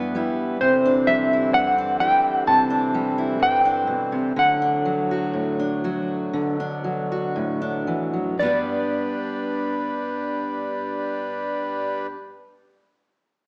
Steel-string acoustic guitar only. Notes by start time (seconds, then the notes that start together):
Already playing: G2 G3 B3 E4
0.15 G3 E4
0.61 C3
0.86 D4
1.07 G3
1.33 E4
1.54 G2
1.78 D4
2.00 G3 E4
2.47 C3
2.70 D4
2.94 G3
3.18 E4
3.40 G2
3.65 D4
3.87 B2
4.12 C3
4.36 D3
4.62 D4
4.85 F#3
5.11 F#4
5.33 A2
5.60 D4
5.84 F#3 F#4
6.33 D3
6.60 D4
6.84 F#3
7.12 F#4
7.36 A2
7.62 D4
7.87 E3
8.13 F#3
8.39 G2 G3 B3
8.45 D4 B4